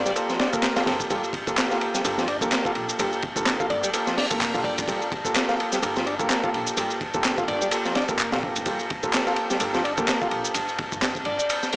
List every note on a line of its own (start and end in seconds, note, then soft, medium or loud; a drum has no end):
0.00 0.13 A#3 medium
0.00 11.76 A#3 medium
0.00 0.13 F4 medium
0.00 0.13 G4 medium
0.00 11.76 G4 medium
0.00 0.13 A4 medium
0.00 11.76 F5 medium
0.00 1.09 C6 medium
0.05 0.12 G3 loud
0.05 0.12 D5 medium
0.05 snare soft
0.05 shaker medium
0.16 0.33 A#3 medium
0.16 0.33 F4 medium
0.16 0.33 G4 medium
0.16 0.33 A4 loud
0.16 ride medium
0.16 shaker medium
0.29 0.38 F3 medium
0.29 snare soft
0.29 shaker soft
0.39 0.48 D4 loud
0.39 snare loud
0.39 ride medium
0.53 0.61 A#3 medium
0.53 0.75 A#3 loud
0.53 0.61 F4 medium
0.53 0.61 G4 medium
0.53 0.61 A4 loud
0.53 kick medium
0.53 shaker medium
0.63 snare loud
0.63 clap loud
0.63 ride medium
0.63 shaker medium
0.76 0.85 A#3 medium
0.76 0.83 F4 loud
0.76 0.85 F4 medium
0.76 0.85 G4 medium
0.76 0.85 A4 loud
0.76 snare loud
0.76 ride medium
0.76 shaker soft
0.86 0.97 G1 medium
0.86 1.03 A#3 medium
0.86 1.03 F4 medium
0.86 1.03 G4 medium
0.86 1.03 A4 medium
0.86 snare loud
0.86 ride medium
1.00 kick medium
1.00 shaker medium
1.10 1.23 G3 medium
1.10 1.27 A#3 medium
1.10 1.27 F4 medium
1.10 1.27 G4 medium
1.10 1.27 A4 medium
1.10 8.65 A5 medium
1.10 kick loud
1.10 ride medium
1.10 shaker medium
1.24 shaker soft
1.33 kick medium
1.33 ride medium
1.47 1.68 A#3 medium
1.47 1.68 F4 medium
1.47 1.68 G4 medium
1.47 1.68 A4 loud
1.47 kick medium
1.47 shaker medium
1.57 snare loud
1.57 clap loud
1.57 ride medium
1.57 shaker medium
1.71 2.02 A#3 medium
1.71 1.77 F4 loud
1.71 2.02 F4 medium
1.71 2.02 G4 medium
1.71 2.02 A4 medium
1.71 snare soft
1.71 shaker soft
1.81 ride medium
1.94 2.01 G3 loud
1.94 snare soft
1.94 shaker medium
2.05 2.37 G1 loud
2.05 2.21 A#3 medium
2.05 2.21 F4 medium
2.05 2.21 G4 medium
2.05 2.21 A4 loud
2.05 ride medium
2.05 shaker medium
2.18 2.27 F3 medium
2.18 snare medium
2.18 shaker soft
2.28 2.37 D4 loud
2.28 ride medium
2.41 2.50 G2 medium
2.41 2.50 A#3 loud
2.41 2.64 A#3 loud
2.41 2.50 F4 medium
2.41 2.50 G4 medium
2.41 2.50 A4 loud
2.41 kick medium
2.41 shaker medium
2.52 snare loud
2.52 clap loud
2.52 ride medium
2.52 shaker medium
2.65 2.97 A#3 medium
2.65 2.97 F4 medium
2.65 2.72 F4 loud
2.65 2.97 G4 medium
2.65 2.97 A4 loud
2.65 kick medium
2.65 shaker soft
2.75 2.86 A#1 medium
2.75 ride medium
2.89 shaker medium
2.99 3.10 G1 medium
2.99 3.12 G3 medium
2.99 3.16 A#3 medium
2.99 3.16 F4 medium
2.99 3.16 G4 medium
2.99 3.16 A4 medium
2.99 ride medium
2.99 shaker medium
3.13 shaker soft
3.22 kick medium
3.22 ride medium
3.36 3.66 G1 medium
3.36 3.57 A#3 medium
3.36 3.57 F4 medium
3.36 3.57 G4 medium
3.36 3.57 A4 loud
3.36 kick medium
3.36 shaker medium
3.46 snare loud
3.46 clap loud
3.46 ride medium
3.46 shaker medium
3.60 3.91 A#3 medium
3.60 3.66 F4 loud
3.60 3.91 F4 medium
3.60 3.91 G4 medium
3.60 3.91 A4 medium
3.60 kick medium
3.60 shaker soft
3.70 3.81 G1 medium
3.70 3.79 D5 medium
3.70 ride medium
3.83 3.90 G3 loud
3.83 3.90 D5 medium
3.83 shaker medium
3.93 4.10 A#3 medium
3.93 4.10 F4 medium
3.93 4.10 G4 medium
3.93 4.10 A4 loud
3.93 ride medium
3.93 shaker medium
4.07 4.16 F3 medium
4.07 snare soft
4.07 shaker soft
4.17 4.26 D4 loud
4.17 snare medium
4.17 open hi-hat medium
4.31 4.54 F1 medium
4.31 4.39 A#3 loud
4.31 4.53 A#3 loud
4.31 4.39 F4 medium
4.31 4.39 G4 medium
4.31 4.39 A4 loud
4.31 kick loud
4.31 shaker medium
4.41 kick loud
4.41 clap loud
4.41 ride medium
4.41 shaker medium
4.54 4.66 A#1 medium
4.54 4.86 A#3 medium
4.54 4.86 F4 medium
4.54 4.61 F4 loud
4.54 4.86 G4 medium
4.54 4.86 A4 loud
4.54 shaker soft
4.64 4.80 G2 medium
4.64 5.12 D5 medium
4.64 kick medium
4.64 ride medium
4.78 4.86 F1 loud
4.78 kick loud
4.78 ride medium
4.78 shaker medium
4.88 5.01 G3 medium
4.88 5.05 A#3 medium
4.88 5.05 F4 medium
4.88 5.05 G4 medium
4.88 5.05 A4 medium
4.88 kick loud
4.88 ride medium
4.88 shaker medium
5.02 shaker soft
5.12 kick loud
5.12 ride medium
5.25 5.46 A#3 medium
5.25 5.46 F4 medium
5.25 5.46 G4 medium
5.25 5.46 A4 loud
5.25 kick medium
5.25 shaker medium
5.35 snare loud
5.35 clap loud
5.35 ride medium
5.35 shaker medium
5.49 5.80 A#3 medium
5.49 5.80 F4 medium
5.49 5.55 F4 loud
5.49 5.80 G4 medium
5.49 5.80 A4 medium
5.49 snare soft
5.49 shaker soft
5.60 ride medium
5.72 5.79 G3 loud
5.72 snare soft
5.72 shaker medium
5.82 6.15 G1 loud
5.82 5.99 A#3 medium
5.82 5.99 F4 medium
5.82 5.99 G4 medium
5.82 5.99 A4 loud
5.82 ride loud
5.82 shaker medium
5.96 6.05 F3 medium
5.96 snare medium
5.96 shaker soft
6.06 6.15 D4 loud
6.06 ride medium
6.19 6.28 G2 medium
6.19 6.28 A#3 loud
6.19 6.42 A#3 loud
6.19 6.28 F4 medium
6.19 6.28 G4 medium
6.19 6.28 A4 loud
6.19 kick medium
6.19 shaker medium
6.30 snare loud
6.30 clap loud
6.30 ride medium
6.30 shaker medium
6.43 6.75 A#3 medium
6.43 6.75 F4 medium
6.43 6.50 F4 loud
6.43 6.75 G4 medium
6.43 6.75 A4 loud
6.43 kick medium
6.43 shaker soft
6.53 6.64 A#1 medium
6.53 ride medium
6.67 shaker medium
6.77 6.88 G1 medium
6.77 6.90 G3 medium
6.77 6.94 A#3 medium
6.77 6.94 F4 medium
6.77 6.94 G4 medium
6.77 6.94 A4 medium
6.77 ride medium
6.77 shaker medium
6.90 shaker soft
7.01 kick loud
7.01 ride medium
7.14 7.45 G1 medium
7.14 7.35 A#3 medium
7.14 7.35 F4 medium
7.14 7.35 G4 medium
7.14 7.35 A4 loud
7.14 kick medium
7.14 shaker medium
7.24 snare loud
7.24 clap loud
7.24 ride medium
7.24 shaker medium
7.38 7.69 A#3 medium
7.38 7.44 F4 loud
7.38 7.69 F4 medium
7.38 7.69 G4 medium
7.38 7.69 A4 medium
7.38 kick medium
7.38 shaker soft
7.48 7.59 G1 medium
7.48 7.57 D5 medium
7.48 ride medium
7.61 7.68 G3 loud
7.61 7.68 D5 medium
7.61 shaker medium
7.71 7.88 A#3 medium
7.71 7.88 F4 medium
7.71 7.88 G4 medium
7.71 7.88 A4 loud
7.71 ride medium
7.71 shaker medium
7.85 7.94 F3 medium
7.85 snare soft
7.85 shaker soft
7.95 8.04 D4 loud
7.95 snare loud
7.95 ride medium
8.09 8.32 F1 medium
8.09 8.17 A#3 loud
8.09 8.31 A#3 loud
8.09 8.17 F4 medium
8.09 8.17 G4 medium
8.09 8.17 A4 loud
8.09 kick medium
8.09 shaker medium
8.19 clap loud
8.19 ride medium
8.19 shaker medium
8.32 8.45 A#1 medium
8.32 8.64 A#3 medium
8.32 8.64 F4 medium
8.32 8.39 F4 loud
8.32 8.64 G4 medium
8.32 8.64 A4 loud
8.32 snare loud
8.32 ride medium
8.32 shaker soft
8.43 8.57 G2 medium
8.43 kick medium
8.56 8.64 F1 medium
8.56 ride medium
8.56 shaker medium
8.66 8.79 G3 medium
8.66 8.83 A#3 medium
8.66 8.83 F4 medium
8.66 8.83 G4 medium
8.66 8.83 A4 medium
8.66 11.76 A5 medium
8.66 kick loud
8.66 ride medium
8.66 shaker medium
8.79 shaker soft
8.90 kick loud
8.90 ride medium
9.03 9.24 A#3 medium
9.03 9.24 F4 medium
9.03 9.24 G4 medium
9.03 9.24 A4 loud
9.03 kick medium
9.03 shaker medium
9.13 snare loud
9.13 clap loud
9.13 ride loud
9.13 shaker medium
9.26 9.58 A#3 medium
9.26 9.33 F4 loud
9.26 9.58 F4 medium
9.26 9.58 G4 medium
9.26 9.58 A4 medium
9.26 snare soft
9.26 shaker soft
9.36 ride medium
9.50 9.57 G3 loud
9.50 snare soft
9.50 shaker medium
9.60 9.93 G1 loud
9.60 9.77 A#3 medium
9.60 9.77 F4 medium
9.60 9.77 G4 medium
9.60 9.77 A4 loud
9.60 ride loud
9.60 shaker medium
9.74 9.83 F3 medium
9.74 snare medium
9.74 shaker soft
9.84 9.93 D4 loud
9.84 ride medium
9.98 10.06 G2 loud
9.98 10.06 A#3 loud
9.98 10.20 A#3 loud
9.98 10.06 F4 medium
9.98 10.06 G4 medium
9.98 10.06 A4 loud
9.98 kick medium
9.98 shaker medium
10.08 snare loud
10.08 clap loud
10.08 ride medium
10.08 shaker soft
10.21 10.53 A#3 medium
10.21 10.53 F4 medium
10.21 10.28 F4 loud
10.21 10.53 G4 medium
10.21 10.53 A4 loud
10.21 kick loud
10.21 shaker soft
10.31 10.42 A#1 medium
10.31 ride medium
10.45 shaker medium
10.54 10.66 G1 medium
10.54 ride medium
10.54 shaker medium
10.69 shaker soft
10.78 kick loud
10.78 ride medium
10.92 11.23 G1 medium
10.92 kick medium
10.92 shaker medium
11.02 snare loud
11.02 clap loud
11.02 ride loud
11.02 shaker medium
11.15 kick loud
11.15 shaker soft
11.25 11.37 G1 medium
11.25 11.34 D5 medium
11.25 ride medium
11.39 11.46 D5 medium
11.39 shaker medium
11.49 ride loud
11.49 shaker medium
11.63 snare soft
11.63 shaker soft
11.73 open hi-hat medium